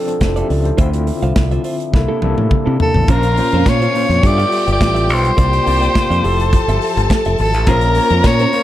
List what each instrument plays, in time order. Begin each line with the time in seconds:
Already playing: french horn section F3 D4 A4, tine electric piano F3 C4 D4 A4
0.08 muted clean electric guitar stroke, closed hi-hat
0.21 fingered electric bass F1, tine electric piano E4 C5, muted clean electric guitar stroke, kick, snare, closed hi-hat
0.36 clean electric guitar F4 A4 D5, tine electric piano G4 E5, closed hi-hat
0.50 fingered electric bass C#2, tine electric piano F4 D5, muted clean electric guitar stroke, open hi-hat
0.65 tine electric piano E4 C5, muted clean electric guitar stroke, closed hi-hat
0.77 fingered electric bass D2, tine electric piano D3 C4 E4 F4, french horn section D3 F3 C4 E5, clean electric guitar F4 C5 E5, kick, closed hi-hat
0.93 closed hi-hat
1.06 muted clean electric guitar stroke, open hi-hat
1.22 fingered electric bass C2, clean electric guitar F4 C5 F5, closed hi-hat
1.36 fingered electric bass C2, kick, snare, closed hi-hat
1.51 clean electric guitar F4 C5 E5, closed hi-hat
1.64 clean electric guitar F4 C5 E5, open hi-hat
1.80 muted clean electric guitar stroke, closed hi-hat
1.93 fingered electric bass C2, tine electric piano C3 A#3 D4 E4 A4, french horn section C3 A#3 D4 A4, muted clean electric guitar stroke, kick, snare
2.08 clean electric guitar A#3 E4 A4
2.22 fingered electric bass C2, tine electric piano C3 A#3 D4 E4 A4, high tom
2.38 fingered electric bass A2, muted clean electric guitar stroke, high tom
2.51 muted clean electric guitar stroke, kick, mid tom
2.66 fingered electric bass C3, clean electric guitar A#3 E4 A4
2.80 soprano saxophone A4, muted clean electric guitar stroke, floor tom
2.94 fingered electric bass A1, muted clean electric guitar stroke, floor tom
3.08 fingered electric bass A#1, tine electric piano A#2 A#3 C#4 C5, french horn section C#3 A#3 C#4, clean electric guitar C#4 F4 C5, string section F4 F5, soprano saxophone A#4, kick, closed hi-hat
3.23 muted clean electric guitar stroke, closed hi-hat
3.37 tine electric piano A#2 A#3 C#4 C5, muted clean electric guitar stroke, open hi-hat
3.53 fingered electric bass F2, clean electric guitar C#4 F4 C5, closed hi-hat
3.66 fingered electric bass A#2, soprano saxophone C#5, kick, snare, closed hi-hat
3.81 clean electric guitar C#4 F4 C5, closed hi-hat
3.94 tine electric piano A#2 A#3 C#4 C5, clean electric guitar C#4 F4 C5, open hi-hat
4.09 fingered electric bass F2, closed hi-hat
4.23 fingered electric bass G2, french horn section G3 B3 F4, tine electric piano G3 F4 A4 B4 E5, string section G4 G5, soprano saxophone D5, muted clean electric guitar stroke, kick, closed hi-hat
4.38 clean electric guitar F4 B4 F5, closed hi-hat
4.51 muted clean electric guitar stroke, open hi-hat
4.66 fingered electric bass G1, muted clean electric guitar stroke, closed hi-hat
4.72 soprano saxophone D5
4.80 fingered electric bass A1, muted clean electric guitar stroke, kick, snare, closed hi-hat
4.94 clean electric guitar F4 B4 E5, closed hi-hat
5.08 fingered electric bass B1, muted clean electric guitar stroke, open hi-hat
5.14 soprano saxophone C5
5.24 muted clean electric guitar stroke, closed hi-hat
5.37 fingered electric bass C2, tine electric piano C3 A#3 F4 D5, french horn section C3 A#3 D4, string section G4 G5, clean electric guitar A#4 D5 F5, kick, closed hi-hat
5.52 muted clean electric guitar stroke, closed hi-hat
5.66 fingered electric bass C2, tine electric piano C3 A#3 F4 D5, muted clean electric guitar stroke, open hi-hat
5.81 clean electric guitar A#4 D5 G5, closed hi-hat
5.95 kick, snare, closed hi-hat
6.10 fingered electric bass F2, clean electric guitar A#4 D5 F5, closed hi-hat
6.23 fingered electric bass F1, tine electric piano F3 E4 G4 A4, french horn section F3 E4 G4 A4, clean electric guitar G4 A4 E5, string section A4 A5, open hi-hat
6.40 closed hi-hat
6.53 muted clean electric guitar stroke, kick, closed hi-hat
6.68 fingered electric bass G1, clean electric guitar G4 A4 E5, closed hi-hat
6.82 clean electric guitar G4 A4 E5, open hi-hat
6.97 fingered electric bass G1, muted clean electric guitar stroke, closed hi-hat
7.10 muted clean electric guitar stroke, kick, snare, closed hi-hat
7.25 fingered electric bass F1, clean electric guitar G4 A4 E5, closed hi-hat
7.38 fingered electric bass G#1, soprano saxophone A4, muted clean electric guitar stroke, open hi-hat
7.54 fingered electric bass A1, muted clean electric guitar stroke, closed hi-hat
7.67 fingered electric bass A#1, french horn section A#3 C#4, tine electric piano A#3 F4 C5 C#5, clean electric guitar C#4 F4 C5, string section A#4 A#5, soprano saxophone A#4, kick, closed hi-hat
7.81 closed hi-hat
7.95 tine electric piano A#3 F4 C5 C#5, muted clean electric guitar stroke, open hi-hat
8.10 fingered electric bass F2, clean electric guitar C#4 F4 C5, closed hi-hat
8.24 fingered electric bass A#2, soprano saxophone C#5, kick, snare, closed hi-hat
8.39 clean electric guitar C#4 F4 C5, closed hi-hat
8.53 tine electric piano A#3 F4 C5 C#5, clean electric guitar C#4 F4 C5, open hi-hat